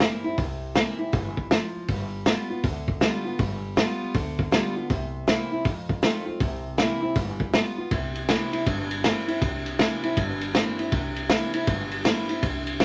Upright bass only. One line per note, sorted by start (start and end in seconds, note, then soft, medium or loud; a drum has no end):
0.25 muted upright bass stroke medium
0.38 0.81 C2 medium
1.00 muted upright bass stroke medium
1.13 1.57 G1 loud
1.75 muted upright bass stroke medium
1.89 2.32 G1 medium
2.51 muted upright bass stroke medium
2.64 3.07 D2 loud
3.26 muted upright bass stroke medium
3.39 3.82 G1 medium
4.02 muted upright bass stroke medium
4.14 4.58 D2 medium
4.77 muted upright bass stroke medium
4.90 5.33 C2 loud
5.52 muted upright bass stroke medium
5.65 6.09 F2 loud
6.27 muted upright bass stroke medium
6.41 6.84 C2 loud
7.03 muted upright bass stroke medium
7.16 7.59 G1 loud
7.78 muted upright bass stroke medium
7.91 8.34 C2 medium
8.53 muted upright bass stroke medium
8.66 9.10 G1 medium
9.28 muted upright bass stroke medium
9.42 9.85 C2 medium
10.04 muted upright bass stroke medium
10.17 10.60 G1 medium
10.79 muted upright bass stroke medium
10.92 11.36 C2 medium
11.54 muted upright bass stroke medium
11.67 12.11 G1 loud
12.30 muted upright bass stroke medium
12.43 12.85 C2 medium